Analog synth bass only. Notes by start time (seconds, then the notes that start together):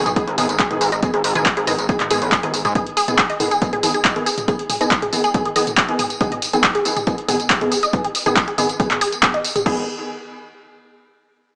0.06 B1
0.27 G#1
0.38 G#1
0.49 G#1
0.71 G#1
0.81 G#1
0.92 G#1
1.14 G#1
1.24 G#1
1.35 G#1
1.57 G#1
1.67 G#1
1.79 G#1
2.00 G#1
2.11 G#2
2.22 A1
2.43 G#1
2.54 G#1
2.65 G#2
9.66 G#1